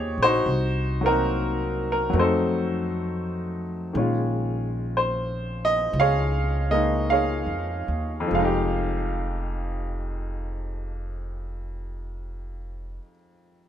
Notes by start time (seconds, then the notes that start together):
Already playing: D#2 D#3 G#3 A#3 D#4 G4 G#4 C5 C#5 D#5
0.18 A#1
0.23 D#4 F#4 C5
0.46 C2
1.01 F#3 A#3 C4
1.06 D#4 F#4 A#4
1.92 A#4
2.10 F2 F#3 A3
2.15 C4 A#4
2.19 D#4 A4 C5
3.93 A#1 D#3 G#3 C#4
3.99 F4
4.97 C5
5.65 D#5
5.93 C#2
6.00 G#4 C#5 F5
6.71 G#3 A#3 D#4 D#5
7.10 G#4 C#5 F5
7.46 F2
7.88 D#2
8.20 F2
8.27 F1 F3
8.33 G#3 F5
8.39 D#4
8.45 G4